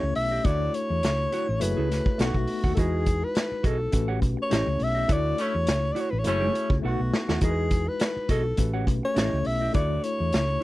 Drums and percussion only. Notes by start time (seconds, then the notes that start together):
0.15 open hi-hat
0.45 kick, closed hi-hat
0.74 closed hi-hat
1.03 snare, closed hi-hat
1.32 closed hi-hat
1.61 closed hi-hat
1.92 snare, closed hi-hat
2.06 kick
2.19 snare, closed hi-hat
2.34 kick
2.47 open hi-hat
2.64 kick
2.77 kick, closed hi-hat
3.06 kick, closed hi-hat
3.35 snare, closed hi-hat
3.64 kick, closed hi-hat
3.92 kick, closed hi-hat
4.22 kick, closed hi-hat
4.51 snare, closed hi-hat
4.80 open hi-hat
5.09 kick, closed hi-hat
5.38 closed hi-hat
5.67 snare, closed hi-hat
5.96 closed hi-hat
6.24 closed hi-hat
6.55 closed hi-hat
6.70 kick
7.13 snare
7.29 snare
7.41 kick, closed hi-hat
7.71 kick, closed hi-hat
8.00 snare, closed hi-hat
8.29 kick, closed hi-hat
8.57 kick, closed hi-hat
8.87 kick, closed hi-hat
9.16 snare, closed hi-hat
9.45 open hi-hat
9.74 kick, closed hi-hat
10.04 closed hi-hat
10.33 snare, closed hi-hat